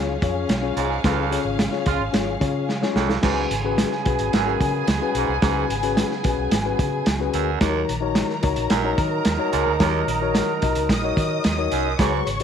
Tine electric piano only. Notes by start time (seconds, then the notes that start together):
Already playing: C#4 F4 G#4 C#5
0.22 C#4 F4 G#4 C#5
0.62 C#4 F4 G#4 C#5
1.03 C#3 C#4 F4 G#4 B4
1.31 C#4 F4 G#4 C#5
1.72 C#4 F4 G#4 C#5
2.12 C#4 F4 G#4 C#5
2.40 C#4 F4 G#4 C#5
2.82 C#4 F4 G#4 C#5
3.23 C#3 C#4 F#4 G#4 B4
3.64 C#4 F#4 G#4 B4
4.05 C#4 F#4 G#4 B4
4.46 C#4 F#4 G#4 A#4
5.01 C#4 F#4 G#4 B4
5.42 C#3 C#4 F#4 G#4 B4
5.83 C#4 F#4 G#4 B4
6.24 C#4 F#4 G#4 B4
6.65 C#4 F#4 G#4 B4
7.20 C#4 F#4 G#4 B4
7.61 D#3 D#4 F#4 A#4 C#5
8.01 D#4 F#4 A#4 C#5
8.42 D#4 F#4 A#4 C#5
8.84 D#4 F#4 A#4 C#5
9.38 D#4 F#4 A#4 C#5
9.80 D#3 D#4 F#4 A#4 C#5
10.21 D#4 F#4 A#4 C#5
10.62 D#4 F#4 A#4 D#5
11.03 D#4 F#4 A#4 C#5
11.58 D#4 F#4 A#4 C#5
12.00 C#3 F#4 G#4 B4 C#5
12.40 F#4